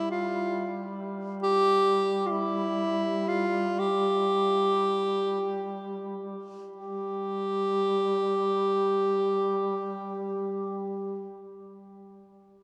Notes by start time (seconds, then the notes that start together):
Already playing: G3
0.11 F4
1.43 G4
2.27 F4
2.31 E4
3.28 F4
3.79 G4
6.76 G3 G4